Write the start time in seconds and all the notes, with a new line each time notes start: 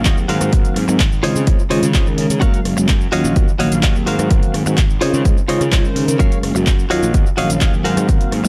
Already playing: D#3 F#3 A#3 C#4 F5
0.05 D#2 F4 F#4 C#5 D#5, kick, clap, closed hi-hat, cabasa
0.17 D#3 F#3 A#3 C4 G#4, cabasa
0.28 G#2 F#4 A#4 C5 F5, open hi-hat
0.41 G#2, cross-stick, closed hi-hat, cabasa
0.52 G#1 D#3 F#3 A#3 C4 F5, kick, closed hi-hat, cabasa
0.65 muted fingered electric bass stroke, closed hi-hat, cabasa
0.76 G#2, cross-stick, open hi-hat
0.88 G#2 D#3 F#3 A#3 C4 F#4, muted clean electric guitar stroke, cabasa
0.99 G#1, muted clean electric guitar stroke, kick, clap, closed hi-hat, cabasa
1.12 cabasa
1.23 C#3 D#3 G#3 C4 C#4 F4 C5 C#5 D#5, open hi-hat
1.36 C#3, cabasa
1.47 C#2 D#3 G#3 C4 C#4 G#4, kick, closed hi-hat, cabasa
1.59 muted fingered electric bass stroke, cabasa
1.70 C#3 D#3 G#3 C#4 F4 C5 C#5 D#5, open hi-hat
1.83 C#3, closed hi-hat, cabasa
1.94 C#2 F4 C5 C#5 D#5, kick, clap, closed hi-hat, cabasa
2.06 D#3 G#3 C#4 A#4, cabasa
2.17 C#3, muted clean electric guitar stroke, open hi-hat
2.30 C#3, closed hi-hat, cabasa
2.41 F#2 F#3 G#3 A#3 C#4 F#4 A#4 C#5 F5, kick, closed hi-hat, cabasa
2.54 closed hi-hat, cabasa
2.65 F#1, cross-stick, open hi-hat
2.77 F#1 F#3 G#3 A#3 C#4 F#4, muted clean electric guitar stroke, cabasa
2.88 F#2, muted clean electric guitar stroke, kick, clap, closed hi-hat, cabasa
3.01 cabasa
3.12 D#2 D#3 F#3 A#3 C#4 F4 F#4 C#5 D#5 F5, open hi-hat
3.25 A#1, cabasa
3.35 D#2 D#3 F#3 A#3 C#4 F#4, kick, closed hi-hat, cabasa
3.48 cabasa
3.59 A#1 D#3 F#3 A#3 C#4 F#4 C#5 D#5 F5, open hi-hat
3.72 A#1, closed hi-hat, cabasa
3.83 D#2 F#4 C#5 D#5 F5, kick, clap, closed hi-hat, cabasa
3.95 D#3 F#3 A#3 C4 G#4, cabasa
4.06 G#2 F#4 A#4 C5 F5, open hi-hat
4.19 G#2, cross-stick, closed hi-hat, cabasa
4.30 G#1 D#3 F#3 A#3 C4 F5, kick, closed hi-hat, cabasa
4.43 muted fingered electric bass stroke, closed hi-hat, cabasa
4.54 G#2, cross-stick, open hi-hat
4.66 G#2 D#3 F#3 A#3 C4 F#4, muted clean electric guitar stroke, cabasa
4.77 G#1, muted clean electric guitar stroke, kick, clap, closed hi-hat, cabasa
4.90 cabasa
5.01 C#3 D#3 G#3 C4 C#4 F4 C5 C#5 D#5, open hi-hat
5.13 C#3, cabasa
5.25 C#2 D#3 G#3 C4 C#4 G#4, kick, closed hi-hat, cabasa
5.37 muted fingered electric bass stroke, cabasa
5.48 C#3 D#3 G#3 C#4 F4 C5 C#5 D#5, open hi-hat
5.61 C#3, cross-stick, closed hi-hat, cabasa
5.72 C#2 F4 C5 C#5 D#5, kick, clap, closed hi-hat, cabasa
5.84 D#3 G#3 C#4 A#4, cabasa
5.96 C#3, muted clean electric guitar stroke, open hi-hat
6.08 C#3, closed hi-hat, cabasa
6.19 F#2 F#3 G#3 A#3 C#4 F#4 A#4 C#5 F5, kick, closed hi-hat, cabasa
6.32 closed hi-hat, cabasa
6.43 F#1, cross-stick, open hi-hat
6.55 F#1 F#3 G#3 A#3 C#4 F#4, muted clean electric guitar stroke, cabasa
6.67 F#2, muted clean electric guitar stroke, kick, clap, closed hi-hat, cabasa
6.79 cabasa
6.90 D#2 D#3 F#3 A#3 C#4 F4 F#4 C#5 D#5 F5, open hi-hat
7.03 A#1, cabasa
7.13 D#2 D#3 F#3 A#3 C#4 F#4, kick, closed hi-hat, cabasa
7.26 cabasa
7.37 A#1 D#3 F#3 A#3 C#4 F#4 C#5 D#5 F5, open hi-hat
7.50 A#1, closed hi-hat, cabasa
7.61 D#2 F#4 C#5 D#5 F5, kick, clap, closed hi-hat, cabasa
7.73 D#3 F#3 A#3 C4 G#4, cabasa
7.84 G#2 F#4 A#4 C5 F5, open hi-hat
7.97 G#2, cross-stick, closed hi-hat, cabasa
8.08 G#1 D#3 F#3 A#3 C4 F5, kick, closed hi-hat, cabasa
8.21 muted fingered electric bass stroke, closed hi-hat, cabasa
8.32 G#2, cross-stick, open hi-hat
8.44 G#2 D#3 F#3 A#3 C4 F#4, muted clean electric guitar stroke, cabasa